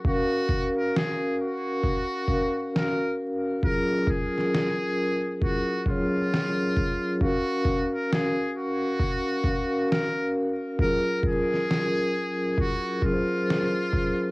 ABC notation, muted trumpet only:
X:1
M:4/4
L:1/16
Q:"Swing 16ths" 1/4=67
K:Gb
V:1 name="Muted trumpet"
G3 B A2 G6 B2 z2 | B2 A6 G2 F6 | G3 B A2 G6 B2 z2 | B2 A6 G2 F6 |]